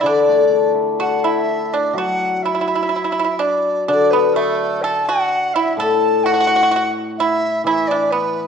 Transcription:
Already playing: hammered dulcimer E3
0.00 hammered dulcimer D3, pipa E4, dizi D5
0.06 pipa D4
0.28 hammered dulcimer A3
0.50 hammered dulcimer D4
0.74 hammered dulcimer E4
0.99 pipa F#4, hammered dulcimer A4, dizi F#5
1.23 pipa E4, dizi E5
1.73 pipa D4, dizi D5
1.93 hammered dulcimer F#3
1.98 pipa F#4, dizi F#5
2.36 dizi F#5
2.42 pipa E4, dizi E5
2.55 pipa E4
2.61 pipa E4
2.68 pipa E4
2.75 pipa E4
2.83 pipa E4
2.89 pipa E4
2.96 pipa E4
3.04 pipa E4
3.12 pipa E4
3.19 pipa E4
3.24 pipa E4
3.39 pipa D4, dizi D5
3.87 hammered dulcimer D3, pipa D4, dizi D5
4.10 pipa B3, dizi B4
4.34 pipa A3, dizi A4
4.82 pipa A4, dizi A5
5.06 pipa F#4, dizi F#5
5.54 pipa E4, dizi E5
5.77 hammered dulcimer A2, pipa A4, dizi A5
6.24 pipa F#4, dizi F#5
6.34 pipa F#4
6.40 pipa F#4
6.47 pipa F#4
6.56 pipa F#4
6.63 pipa F#4
6.71 pipa F#4
6.76 pipa F#4
7.18 pipa E4, dizi E5
7.64 hammered dulcimer E3, pipa E4, dizi E5
7.87 pipa D4, dizi D5
8.11 pipa B3, dizi B4

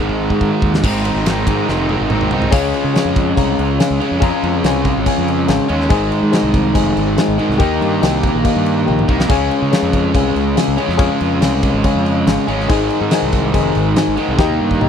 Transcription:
Already playing: distorted electric guitar G#2
0.00 fingered electric bass G#1, distorted electric guitar D#3 G#3
0.09 kick
0.30 fingered electric bass G#2, kick
0.41 kick
0.62 fingered electric bass D#2, kick
0.74 snare
0.83 fingered electric bass G#1, distorted electric guitar G#2 D#3 G#3 C4 D#4, kick, crash
1.05 distorted electric guitar G#3 C4 D#4, ride
1.15 fingered electric bass G#1
1.25 distorted electric guitar G#2 D#3 G#3 C4 D#4, snare, ride
1.47 fingered electric bass G#2, distorted electric guitar G#3 C4 D#4, kick, ride
1.67 fingered electric bass F1, distorted electric guitar D#3 G#3 C4 D#4, snare
1.89 distorted electric guitar G#2 D#3 G#3 C4 D#4, high tom
2.01 fingered electric bass G#1
2.09 distorted electric guitar D#3 G#3 C4 D#4, mid tom
2.21 mid tom
2.31 fingered electric bass C2, distorted electric guitar G#3 C4 D#4, floor tom
2.42 floor tom
2.51 fingered electric bass C#2, distorted electric guitar C#3 G#3 C#4, reed electric piano G#4 C#5 F5 G#5, kick, crash
2.74 crash
2.84 fingered electric bass C#3
2.94 reed electric piano G#4 C#5 F5 G#5, snare, crash
3.05 fingered electric bass F2
3.16 kick, crash
3.36 fingered electric bass C2, reed electric piano G#4 C#5 F5 A#5, kick, crash
3.59 fingered electric bass C#2, crash
3.79 reed electric piano G#4 C#5 F5 G#5, snare, crash
3.90 fingered electric bass C#2
4.00 distorted electric guitar C#3 G#3 C#4, crash
4.11 fingered electric bass F2
4.20 distorted electric guitar C#3 G#3 C#4, reed electric piano G#4 C#5 F5 A#5, kick, crash
4.43 fingered electric bass F2, crash
4.64 fingered electric bass C2, reed electric piano G#4 C#5 F5 G#5, snare, crash
4.85 kick, crash
4.97 fingered electric bass G#1
5.06 reed electric piano G#4 C#5 F5 G#5, kick, crash
5.18 fingered electric bass F2
5.28 crash
5.47 fingered electric bass G#1, reed electric piano G#4 C#5 F5 G#5, snare, crash
5.68 fingered electric bass D#2, distorted electric guitar C#3 G#3 C#4, crash
5.81 snare
5.89 fingered electric bass G#1, distorted electric guitar G#2 D#3 G#3, reed electric piano G#4 C5 D#5 G#5, kick, crash
6.12 crash
6.23 fingered electric bass G#2
6.31 reed electric piano G#4 C5 D#5 G#5, snare, crash
6.43 fingered electric bass C2
6.54 kick, crash
6.73 fingered electric bass F1, reed electric piano G#4 C5 D#5 G#5, kick, crash
6.96 fingered electric bass G#1, crash
7.17 reed electric piano G#4 C5 D#5 G#5, snare, crash
7.28 fingered electric bass G#1
7.38 distorted electric guitar G#2 D#3 G#3, crash
7.49 fingered electric bass C2, snare
7.58 fingered electric bass D#2, distorted electric guitar D#3 A#3 D#4, reed electric piano G4 A#4 D#5 G5, kick, crash
7.81 fingered electric bass G2, crash
8.01 fingered electric bass C2, reed electric piano G4 A#4 D#5 G5, snare, crash
8.23 kick, crash
8.34 fingered electric bass A#1
8.44 reed electric piano G4 A#4 D#5 F5, kick, crash
8.56 fingered electric bass G2
8.66 crash
8.86 fingered electric bass A#1, reed electric piano G4 A#4 D#5 G5, high tom
8.99 mid tom
9.07 fingered electric bass C2, distorted electric guitar D#3 A#3 D#4, kick
9.20 snare
9.29 fingered electric bass C#2, distorted electric guitar C#3 G#3 C#4, reed electric piano G#4 C#5 F5 G#5, kick, crash
9.51 crash
9.62 fingered electric bass C#3
9.71 reed electric piano G#4 C#5 F5 G#5, snare, crash
9.82 fingered electric bass F2
9.93 kick, crash
10.14 fingered electric bass C2, reed electric piano G#4 C#5 F5 G#5, kick, crash
10.35 fingered electric bass C#2, crash
10.56 reed electric piano G#4 C#5 F5 G#5, snare, crash
10.68 fingered electric bass C#2
10.77 distorted electric guitar C#3 G#3 C#4, crash
10.88 fingered electric bass F2, snare
10.97 distorted electric guitar C#3 G#3 C#4, reed electric piano G#4 C#5 F5 G#5, kick, crash
11.21 fingered electric bass F2, crash
11.41 fingered electric bass C2, reed electric piano G#4 C#5 F5 G#5, snare, crash
11.63 kick, crash
11.74 fingered electric bass G#1
11.84 reed electric piano G#4 C#5 F5 G#5, kick, crash
11.95 fingered electric bass F2
12.06 crash
12.27 fingered electric bass G#1, reed electric piano G#4 C#5 F5 G#5, snare, crash
12.47 fingered electric bass G#1, distorted electric guitar C#3 G#3 C#4, crash
12.60 snare
12.69 fingered electric bass G#1, distorted electric guitar G#2 D#3 G#3, reed electric piano G#4 C5 D#5 G#5, kick, crash
12.90 crash
13.01 fingered electric bass G#2
13.11 reed electric piano G#4 C5 D#5 G#5, snare, crash
13.22 fingered electric bass C2
13.32 kick, crash
13.54 fingered electric bass F1, reed electric piano G#4 C5 D#5 G#5, kick, crash
13.75 fingered electric bass G#1, crash
13.96 reed electric piano G#4 C5 D#5 G#5, snare, crash
14.08 fingered electric bass G#1
14.17 distorted electric guitar G#2 D#3 G#3, crash
14.28 fingered electric bass C2
14.38 fingered electric bass D#2, distorted electric guitar D#3 A#3 D#4, reed electric piano G4 A#4 D#5 G5, kick, snare
14.49 high tom
14.61 fingered electric bass G2
14.71 kick
14.81 fingered electric bass C2, reed electric piano G4 A#4 D#5 G5, mid tom

